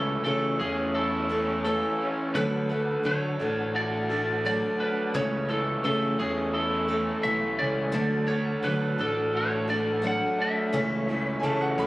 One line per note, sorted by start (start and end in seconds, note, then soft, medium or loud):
0.00 0.15 C#2 medium
0.00 1.30 C#3 medium
0.00 1.64 E3 medium
0.00 0.24 A3 soft
0.00 0.25 A3 medium
0.00 11.87 A3 medium
0.00 0.25 C#4 soft
0.00 0.22 A4 medium
0.00 0.24 A4 soft
0.00 2.32 C#5 medium
0.00 2.31 E5 medium
0.00 2.32 C#6 medium
0.24 0.55 C#3 medium
0.24 0.59 E3 medium
0.24 0.60 A3 soft
0.24 0.59 C#4 medium
0.24 0.57 A4 medium
0.24 0.61 A4 medium
0.60 1.80 E2 medium
0.60 1.31 A3 soft
0.60 1.29 C#4 soft
0.60 0.95 G#4 medium
0.95 2.35 E4 medium
0.95 1.64 A4 medium
1.29 1.64 A3 soft
1.29 1.65 C#4 soft
1.29 1.64 A4 medium
1.64 2.34 E3 soft
1.64 2.35 A3 medium
1.64 2.35 C#4 medium
1.64 2.14 A4 medium
1.64 2.36 A4 medium
2.00 2.35 C#4 medium
2.35 2.95 D2 loud
2.35 2.70 D3 medium
2.35 2.70 F#3 medium
2.35 2.70 A3 medium
2.35 5.12 D4 medium
2.35 2.69 D4 medium
2.35 2.68 A4 medium
2.35 3.01 B4 medium
2.35 5.13 F#5 medium
2.35 5.12 A5 medium
2.69 3.03 A3 soft
2.69 3.04 D4 soft
2.69 3.04 A4 soft
3.03 3.35 D3 medium
3.03 3.39 F#3 soft
3.03 3.40 A3 medium
3.03 3.40 D4 medium
3.03 3.38 A4 medium
3.03 3.75 C#5 medium
3.40 4.61 A1 medium
3.40 4.12 A3 soft
3.40 4.10 D4 medium
3.40 4.09 A4 soft
3.74 5.14 F#4 medium
3.74 4.45 D5 medium
4.10 4.45 A3 soft
4.10 4.45 D4 soft
4.10 4.45 A4 soft
4.44 5.14 D3 medium
4.44 5.14 F#3 medium
4.44 5.15 A3 medium
4.44 5.15 D4 medium
4.44 5.15 A4 medium
4.44 4.78 D5 medium
4.79 5.14 D4 medium
4.79 5.16 B4 medium
5.14 5.75 C#2 loud
5.14 5.49 C#3 medium
5.14 5.49 E3 medium
5.14 5.50 A3 medium
5.14 5.49 C#4 medium
5.14 5.48 A4 medium
5.14 5.51 C#5 medium
5.14 7.92 E5 medium
5.14 7.92 C#6 medium
5.49 7.23 E3 medium
5.49 5.84 A3 soft
5.49 5.84 C#4 soft
5.49 5.84 A4 soft
5.49 5.84 A4 medium
5.84 6.15 C#3 medium
5.84 6.19 E3 medium
5.84 6.19 A3 medium
5.84 6.18 C#4 medium
5.84 6.19 A4 medium
5.84 6.20 A4 medium
6.19 7.10 E2 medium
6.19 6.90 A3 soft
6.19 6.88 C#4 soft
6.19 6.54 G#4 medium
6.53 7.94 E4 medium
6.53 7.26 A4 medium
6.88 7.23 A3 soft
6.88 7.24 C#4 soft
6.88 7.24 A4 medium
7.23 7.56 B1 medium
7.23 7.92 E3 medium
7.23 7.92 A3 medium
7.23 7.93 A4 medium
7.23 7.58 E5 medium
7.58 7.91 C#2 medium
7.58 7.94 C#4 medium
7.58 8.27 D5 medium
7.92 8.55 D2 medium
7.92 8.28 D3 medium
7.92 8.28 F#3 medium
7.92 8.28 A3 medium
7.92 8.27 D4 medium
7.92 10.71 D4 medium
7.92 8.26 A4 medium
7.92 10.72 F#5 medium
7.92 10.71 A5 medium
8.27 8.62 A3 soft
8.27 8.63 D4 soft
8.27 8.63 A4 medium
8.27 8.65 C#5 medium
8.63 8.94 D3 medium
8.63 8.98 F#3 medium
8.63 8.99 A3 medium
8.63 8.99 D4 soft
8.63 8.97 A4 medium
8.63 9.00 B4 medium
8.98 10.20 A1 medium
8.98 9.69 A3 soft
8.98 9.68 D4 soft
8.98 9.67 A4 medium
8.98 9.36 A4 medium
9.33 10.73 F#4 medium
9.33 9.68 C#5 medium
9.68 10.02 A3 soft
9.68 10.02 D4 soft
9.68 10.03 A4 soft
9.68 10.05 D5 medium
10.02 10.73 D3 medium
10.02 10.73 F#3 medium
10.02 10.73 A3 medium
10.02 10.73 D4 medium
10.02 10.74 A4 medium
10.07 10.41 F#5 medium
10.38 10.74 D4 medium
10.38 11.74 E5 medium
10.73 11.34 C#2 loud
10.73 11.08 C#3 medium
10.73 11.08 E3 medium
10.73 11.08 A3 medium
10.73 11.09 C#4 medium
10.73 11.07 A4 medium
10.73 11.87 C#5 medium
10.73 11.87 E5 medium
10.73 11.87 C#6 medium
11.08 11.87 E3 medium
11.08 11.42 A3 soft
11.08 11.43 C#4 soft
11.08 11.44 A4 soft
11.40 11.73 C#3 medium
11.40 11.78 E3 medium
11.40 11.78 A3 medium
11.40 11.44 G#5 medium
11.44 11.79 C#4 medium
11.44 11.77 A4 medium
11.44 11.60 A5 medium
11.61 11.77 F#5 medium
11.74 11.87 D5 medium
11.78 11.87 E2 medium
11.78 11.87 A3 medium
11.78 11.87 C#4 medium
11.78 11.87 A4 medium
11.78 11.87 B5 medium